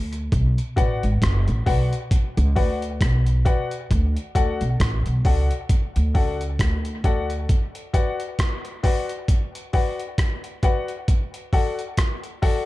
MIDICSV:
0, 0, Header, 1, 4, 480
1, 0, Start_track
1, 0, Key_signature, 2, "minor"
1, 0, Tempo, 896459
1, 171, Time_signature, 4, 2, 24, 8
1, 6776, End_track
2, 0, Start_track
2, 0, Title_t, "Grand piano"
2, 0, Program_c, 0, 0
2, 408, Note_on_c, 0, 66, 86
2, 412, Note_on_c, 0, 71, 82
2, 414, Note_on_c, 0, 74, 84
2, 416, Note_on_c, 0, 78, 97
2, 543, Note_off_c, 0, 66, 0
2, 545, Note_off_c, 0, 71, 0
2, 546, Note_off_c, 0, 74, 0
2, 547, Note_off_c, 0, 78, 0
2, 889, Note_on_c, 0, 66, 77
2, 891, Note_on_c, 0, 71, 69
2, 892, Note_on_c, 0, 74, 69
2, 894, Note_on_c, 0, 78, 91
2, 1023, Note_off_c, 0, 66, 0
2, 1025, Note_off_c, 0, 71, 0
2, 1025, Note_off_c, 0, 74, 0
2, 1026, Note_off_c, 0, 78, 0
2, 1368, Note_on_c, 0, 66, 75
2, 1370, Note_on_c, 0, 71, 80
2, 1373, Note_on_c, 0, 74, 75
2, 1375, Note_on_c, 0, 78, 84
2, 1503, Note_off_c, 0, 66, 0
2, 1504, Note_off_c, 0, 71, 0
2, 1506, Note_off_c, 0, 74, 0
2, 1507, Note_off_c, 0, 78, 0
2, 1848, Note_on_c, 0, 66, 83
2, 1850, Note_on_c, 0, 71, 75
2, 1852, Note_on_c, 0, 74, 74
2, 1855, Note_on_c, 0, 78, 97
2, 1983, Note_off_c, 0, 66, 0
2, 1984, Note_off_c, 0, 71, 0
2, 1985, Note_off_c, 0, 74, 0
2, 1987, Note_off_c, 0, 78, 0
2, 2328, Note_on_c, 0, 66, 87
2, 2331, Note_on_c, 0, 69, 78
2, 2332, Note_on_c, 0, 74, 73
2, 2336, Note_on_c, 0, 78, 97
2, 2464, Note_off_c, 0, 66, 0
2, 2465, Note_off_c, 0, 69, 0
2, 2466, Note_off_c, 0, 74, 0
2, 2467, Note_off_c, 0, 78, 0
2, 2811, Note_on_c, 0, 66, 76
2, 2812, Note_on_c, 0, 69, 73
2, 2813, Note_on_c, 0, 74, 72
2, 2817, Note_on_c, 0, 78, 89
2, 2945, Note_off_c, 0, 66, 0
2, 2946, Note_off_c, 0, 69, 0
2, 2946, Note_off_c, 0, 74, 0
2, 2948, Note_off_c, 0, 78, 0
2, 3289, Note_on_c, 0, 66, 75
2, 3292, Note_on_c, 0, 69, 82
2, 3294, Note_on_c, 0, 74, 71
2, 3296, Note_on_c, 0, 78, 89
2, 3425, Note_off_c, 0, 66, 0
2, 3426, Note_off_c, 0, 69, 0
2, 3427, Note_off_c, 0, 74, 0
2, 3428, Note_off_c, 0, 78, 0
2, 3769, Note_on_c, 0, 66, 83
2, 3772, Note_on_c, 0, 69, 74
2, 3773, Note_on_c, 0, 74, 81
2, 3777, Note_on_c, 0, 78, 95
2, 3905, Note_off_c, 0, 66, 0
2, 3906, Note_off_c, 0, 69, 0
2, 3906, Note_off_c, 0, 74, 0
2, 3908, Note_off_c, 0, 78, 0
2, 4248, Note_on_c, 0, 66, 85
2, 4250, Note_on_c, 0, 71, 74
2, 4253, Note_on_c, 0, 74, 81
2, 4254, Note_on_c, 0, 78, 95
2, 4384, Note_off_c, 0, 66, 0
2, 4385, Note_off_c, 0, 71, 0
2, 4387, Note_off_c, 0, 74, 0
2, 4387, Note_off_c, 0, 78, 0
2, 4729, Note_on_c, 0, 66, 88
2, 4731, Note_on_c, 0, 71, 72
2, 4733, Note_on_c, 0, 74, 77
2, 4736, Note_on_c, 0, 78, 88
2, 4865, Note_off_c, 0, 66, 0
2, 4866, Note_off_c, 0, 71, 0
2, 4867, Note_off_c, 0, 74, 0
2, 4868, Note_off_c, 0, 78, 0
2, 5210, Note_on_c, 0, 66, 80
2, 5213, Note_on_c, 0, 71, 77
2, 5214, Note_on_c, 0, 74, 76
2, 5218, Note_on_c, 0, 78, 87
2, 5346, Note_off_c, 0, 66, 0
2, 5347, Note_off_c, 0, 71, 0
2, 5347, Note_off_c, 0, 74, 0
2, 5349, Note_off_c, 0, 78, 0
2, 5692, Note_on_c, 0, 66, 82
2, 5692, Note_on_c, 0, 71, 83
2, 5695, Note_on_c, 0, 74, 72
2, 5698, Note_on_c, 0, 78, 91
2, 5826, Note_off_c, 0, 66, 0
2, 5827, Note_off_c, 0, 71, 0
2, 5828, Note_off_c, 0, 74, 0
2, 5829, Note_off_c, 0, 78, 0
2, 6171, Note_on_c, 0, 66, 83
2, 6174, Note_on_c, 0, 69, 80
2, 6175, Note_on_c, 0, 74, 73
2, 6178, Note_on_c, 0, 78, 91
2, 6306, Note_off_c, 0, 66, 0
2, 6308, Note_off_c, 0, 69, 0
2, 6308, Note_off_c, 0, 74, 0
2, 6310, Note_off_c, 0, 78, 0
2, 6650, Note_on_c, 0, 66, 86
2, 6651, Note_on_c, 0, 69, 81
2, 6654, Note_on_c, 0, 74, 74
2, 6656, Note_on_c, 0, 78, 90
2, 6776, Note_off_c, 0, 66, 0
2, 6776, Note_off_c, 0, 69, 0
2, 6776, Note_off_c, 0, 74, 0
2, 6776, Note_off_c, 0, 78, 0
2, 6776, End_track
3, 0, Start_track
3, 0, Title_t, "Upright bass"
3, 0, Program_c, 1, 32
3, 0, Note_on_c, 1, 38, 96
3, 150, Note_off_c, 1, 38, 0
3, 173, Note_on_c, 1, 35, 98
3, 300, Note_off_c, 1, 35, 0
3, 413, Note_on_c, 1, 33, 85
3, 540, Note_off_c, 1, 33, 0
3, 553, Note_on_c, 1, 32, 77
3, 647, Note_off_c, 1, 32, 0
3, 654, Note_on_c, 1, 30, 90
3, 781, Note_off_c, 1, 30, 0
3, 793, Note_on_c, 1, 33, 82
3, 888, Note_off_c, 1, 33, 0
3, 893, Note_on_c, 1, 35, 82
3, 1021, Note_off_c, 1, 35, 0
3, 1271, Note_on_c, 1, 37, 97
3, 1366, Note_off_c, 1, 37, 0
3, 1375, Note_on_c, 1, 38, 86
3, 1599, Note_off_c, 1, 38, 0
3, 1613, Note_on_c, 1, 35, 86
3, 1837, Note_off_c, 1, 35, 0
3, 2094, Note_on_c, 1, 38, 103
3, 2222, Note_off_c, 1, 38, 0
3, 2332, Note_on_c, 1, 38, 82
3, 2461, Note_off_c, 1, 38, 0
3, 2469, Note_on_c, 1, 35, 77
3, 2566, Note_off_c, 1, 35, 0
3, 2571, Note_on_c, 1, 33, 97
3, 2700, Note_off_c, 1, 33, 0
3, 2713, Note_on_c, 1, 35, 89
3, 2808, Note_off_c, 1, 35, 0
3, 2814, Note_on_c, 1, 37, 81
3, 2941, Note_off_c, 1, 37, 0
3, 3192, Note_on_c, 1, 38, 87
3, 3287, Note_off_c, 1, 38, 0
3, 3293, Note_on_c, 1, 37, 89
3, 3518, Note_off_c, 1, 37, 0
3, 3532, Note_on_c, 1, 38, 89
3, 3991, Note_off_c, 1, 38, 0
3, 6776, End_track
4, 0, Start_track
4, 0, Title_t, "Drums"
4, 67, Note_on_c, 9, 42, 47
4, 121, Note_off_c, 9, 42, 0
4, 172, Note_on_c, 9, 36, 102
4, 174, Note_on_c, 9, 42, 70
4, 225, Note_off_c, 9, 36, 0
4, 227, Note_off_c, 9, 42, 0
4, 312, Note_on_c, 9, 42, 47
4, 365, Note_off_c, 9, 42, 0
4, 411, Note_on_c, 9, 36, 80
4, 416, Note_on_c, 9, 42, 67
4, 465, Note_off_c, 9, 36, 0
4, 470, Note_off_c, 9, 42, 0
4, 553, Note_on_c, 9, 42, 48
4, 606, Note_off_c, 9, 42, 0
4, 652, Note_on_c, 9, 36, 95
4, 655, Note_on_c, 9, 42, 84
4, 661, Note_on_c, 9, 37, 100
4, 706, Note_off_c, 9, 36, 0
4, 709, Note_off_c, 9, 42, 0
4, 715, Note_off_c, 9, 37, 0
4, 791, Note_on_c, 9, 42, 41
4, 844, Note_off_c, 9, 42, 0
4, 892, Note_on_c, 9, 36, 83
4, 894, Note_on_c, 9, 46, 74
4, 945, Note_off_c, 9, 36, 0
4, 948, Note_off_c, 9, 46, 0
4, 1031, Note_on_c, 9, 42, 54
4, 1085, Note_off_c, 9, 42, 0
4, 1130, Note_on_c, 9, 36, 111
4, 1133, Note_on_c, 9, 42, 85
4, 1183, Note_off_c, 9, 36, 0
4, 1186, Note_off_c, 9, 42, 0
4, 1271, Note_on_c, 9, 42, 55
4, 1325, Note_off_c, 9, 42, 0
4, 1373, Note_on_c, 9, 36, 80
4, 1374, Note_on_c, 9, 46, 44
4, 1426, Note_off_c, 9, 36, 0
4, 1427, Note_off_c, 9, 46, 0
4, 1512, Note_on_c, 9, 42, 49
4, 1565, Note_off_c, 9, 42, 0
4, 1610, Note_on_c, 9, 36, 114
4, 1613, Note_on_c, 9, 42, 94
4, 1617, Note_on_c, 9, 37, 115
4, 1664, Note_off_c, 9, 36, 0
4, 1666, Note_off_c, 9, 42, 0
4, 1671, Note_off_c, 9, 37, 0
4, 1748, Note_on_c, 9, 42, 49
4, 1802, Note_off_c, 9, 42, 0
4, 1851, Note_on_c, 9, 36, 84
4, 1853, Note_on_c, 9, 42, 63
4, 1904, Note_off_c, 9, 36, 0
4, 1906, Note_off_c, 9, 42, 0
4, 1988, Note_on_c, 9, 42, 51
4, 2042, Note_off_c, 9, 42, 0
4, 2092, Note_on_c, 9, 36, 105
4, 2094, Note_on_c, 9, 42, 73
4, 2145, Note_off_c, 9, 36, 0
4, 2147, Note_off_c, 9, 42, 0
4, 2230, Note_on_c, 9, 42, 49
4, 2284, Note_off_c, 9, 42, 0
4, 2330, Note_on_c, 9, 36, 76
4, 2333, Note_on_c, 9, 42, 75
4, 2384, Note_off_c, 9, 36, 0
4, 2386, Note_off_c, 9, 42, 0
4, 2468, Note_on_c, 9, 42, 48
4, 2521, Note_off_c, 9, 42, 0
4, 2570, Note_on_c, 9, 36, 100
4, 2571, Note_on_c, 9, 42, 87
4, 2577, Note_on_c, 9, 37, 104
4, 2624, Note_off_c, 9, 36, 0
4, 2625, Note_off_c, 9, 42, 0
4, 2631, Note_off_c, 9, 37, 0
4, 2708, Note_on_c, 9, 42, 44
4, 2761, Note_off_c, 9, 42, 0
4, 2810, Note_on_c, 9, 36, 95
4, 2810, Note_on_c, 9, 46, 69
4, 2864, Note_off_c, 9, 36, 0
4, 2864, Note_off_c, 9, 46, 0
4, 2949, Note_on_c, 9, 42, 55
4, 3002, Note_off_c, 9, 42, 0
4, 3049, Note_on_c, 9, 36, 112
4, 3050, Note_on_c, 9, 42, 87
4, 3102, Note_off_c, 9, 36, 0
4, 3103, Note_off_c, 9, 42, 0
4, 3190, Note_on_c, 9, 42, 58
4, 3244, Note_off_c, 9, 42, 0
4, 3292, Note_on_c, 9, 36, 84
4, 3293, Note_on_c, 9, 46, 48
4, 3346, Note_off_c, 9, 36, 0
4, 3346, Note_off_c, 9, 46, 0
4, 3431, Note_on_c, 9, 42, 51
4, 3485, Note_off_c, 9, 42, 0
4, 3530, Note_on_c, 9, 36, 113
4, 3534, Note_on_c, 9, 42, 90
4, 3538, Note_on_c, 9, 37, 111
4, 3584, Note_off_c, 9, 36, 0
4, 3587, Note_off_c, 9, 42, 0
4, 3592, Note_off_c, 9, 37, 0
4, 3667, Note_on_c, 9, 42, 50
4, 3721, Note_off_c, 9, 42, 0
4, 3770, Note_on_c, 9, 36, 84
4, 3771, Note_on_c, 9, 42, 59
4, 3823, Note_off_c, 9, 36, 0
4, 3824, Note_off_c, 9, 42, 0
4, 3908, Note_on_c, 9, 42, 48
4, 3962, Note_off_c, 9, 42, 0
4, 4012, Note_on_c, 9, 36, 107
4, 4013, Note_on_c, 9, 42, 75
4, 4065, Note_off_c, 9, 36, 0
4, 4067, Note_off_c, 9, 42, 0
4, 4150, Note_on_c, 9, 42, 53
4, 4203, Note_off_c, 9, 42, 0
4, 4250, Note_on_c, 9, 36, 83
4, 4252, Note_on_c, 9, 42, 73
4, 4304, Note_off_c, 9, 36, 0
4, 4306, Note_off_c, 9, 42, 0
4, 4389, Note_on_c, 9, 42, 47
4, 4443, Note_off_c, 9, 42, 0
4, 4491, Note_on_c, 9, 36, 97
4, 4491, Note_on_c, 9, 42, 86
4, 4497, Note_on_c, 9, 37, 106
4, 4545, Note_off_c, 9, 36, 0
4, 4545, Note_off_c, 9, 42, 0
4, 4551, Note_off_c, 9, 37, 0
4, 4630, Note_on_c, 9, 42, 42
4, 4684, Note_off_c, 9, 42, 0
4, 4731, Note_on_c, 9, 46, 74
4, 4732, Note_on_c, 9, 36, 91
4, 4785, Note_off_c, 9, 46, 0
4, 4786, Note_off_c, 9, 36, 0
4, 4869, Note_on_c, 9, 42, 54
4, 4923, Note_off_c, 9, 42, 0
4, 4971, Note_on_c, 9, 36, 115
4, 4973, Note_on_c, 9, 42, 93
4, 5024, Note_off_c, 9, 36, 0
4, 5026, Note_off_c, 9, 42, 0
4, 5114, Note_on_c, 9, 42, 57
4, 5168, Note_off_c, 9, 42, 0
4, 5211, Note_on_c, 9, 46, 48
4, 5214, Note_on_c, 9, 36, 79
4, 5265, Note_off_c, 9, 46, 0
4, 5267, Note_off_c, 9, 36, 0
4, 5352, Note_on_c, 9, 42, 47
4, 5405, Note_off_c, 9, 42, 0
4, 5452, Note_on_c, 9, 36, 114
4, 5453, Note_on_c, 9, 42, 83
4, 5457, Note_on_c, 9, 37, 110
4, 5505, Note_off_c, 9, 36, 0
4, 5506, Note_off_c, 9, 42, 0
4, 5511, Note_off_c, 9, 37, 0
4, 5589, Note_on_c, 9, 42, 47
4, 5643, Note_off_c, 9, 42, 0
4, 5690, Note_on_c, 9, 42, 65
4, 5691, Note_on_c, 9, 36, 93
4, 5744, Note_off_c, 9, 42, 0
4, 5745, Note_off_c, 9, 36, 0
4, 5828, Note_on_c, 9, 42, 45
4, 5881, Note_off_c, 9, 42, 0
4, 5933, Note_on_c, 9, 36, 103
4, 5934, Note_on_c, 9, 42, 73
4, 5987, Note_off_c, 9, 36, 0
4, 5987, Note_off_c, 9, 42, 0
4, 6071, Note_on_c, 9, 42, 52
4, 6125, Note_off_c, 9, 42, 0
4, 6172, Note_on_c, 9, 36, 81
4, 6175, Note_on_c, 9, 46, 51
4, 6226, Note_off_c, 9, 36, 0
4, 6229, Note_off_c, 9, 46, 0
4, 6311, Note_on_c, 9, 42, 46
4, 6365, Note_off_c, 9, 42, 0
4, 6411, Note_on_c, 9, 42, 85
4, 6413, Note_on_c, 9, 36, 91
4, 6418, Note_on_c, 9, 37, 95
4, 6465, Note_off_c, 9, 42, 0
4, 6466, Note_off_c, 9, 36, 0
4, 6471, Note_off_c, 9, 37, 0
4, 6551, Note_on_c, 9, 42, 42
4, 6605, Note_off_c, 9, 42, 0
4, 6653, Note_on_c, 9, 36, 84
4, 6653, Note_on_c, 9, 46, 72
4, 6707, Note_off_c, 9, 36, 0
4, 6707, Note_off_c, 9, 46, 0
4, 6776, End_track
0, 0, End_of_file